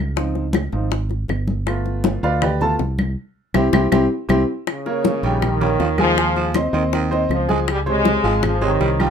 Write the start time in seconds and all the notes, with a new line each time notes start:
Already playing: C#2
0.16 F3 C4 D#4, high bongo, high conga
0.35 high bongo, high conga
0.53 high bongo, high conga, claves
0.72 G#1 F3 C4 D#4, high bongo, high conga
0.91 high bongo, high conga
1.10 high bongo, high conga
1.28 G1, high bongo, low bongo, high conga, claves
1.48 high conga
1.66 A3 B3 F4, high bongo, high conga, claves
1.85 high bongo, high conga
2.04 high bongo, high conga
2.23 D2 F4 B4 D5 F5, high bongo, high conga
2.42 G4 B4 D5 G5, high bongo, high conga, low conga, claves
2.61 A3 B3 F4 A4 A5, high bongo, high conga, low conga
2.79 C2, high bongo, low bongo, high conga
2.99 high conga, claves
3.54 C2 C4 E4 G4, high bongo, high conga, claves
3.73 C2 C4 E4 G4, high bongo, high conga, claves
3.92 C2 C4 E4 G4, high bongo, high conga, claves
4.29 C2 C4 E4 G4, high bongo, high conga, claves
4.67 C#3, high bongo, high conga, claves
4.86 A#3 A#4 C#5, high bongo, high conga
5.05 high bongo, high conga
5.23 A#1 D#3 G3 G4 G5, high bongo, high conga
5.42 D#3, high bongo, high conga, low conga, claves
5.61 G3 A#3 A#4 C#5, high bongo, high conga, low conga
5.79 D#2 F3, high bongo, low bongo, high conga
5.98 D#3 F3 G#3 G#4 G#5, high conga, claves
6.17 G#3 G#4 G#5, high bongo, high conga
6.36 F3, high bongo, high conga
6.54 C4 C5 D#5, high bongo, high conga, claves
6.73 D#2 D#3 C4 C5 D#5, high bongo, high conga
6.93 D#3, high bongo, high conga
7.10 C4 C5 D#5, high bongo, high conga
7.29 C#2 F3, high bongo, low bongo, high conga, claves
7.49 G#3 G#4 G#5, high conga
7.68 G3, high bongo, high conga, claves
7.86 C3 G#3 C5 C#5, high bongo, high conga
8.05 high bongo, high conga
8.23 G#1 F3 G#3 G#4 G#5, high bongo, high conga
8.43 F3, high bongo, high conga, low conga, claves
8.61 C3 D#3 G#3 C5 C#5, high bongo, high conga
8.80 C2 G3, high bongo, low bongo, high conga
9.00 F3 G3 G4 G5, high conga, claves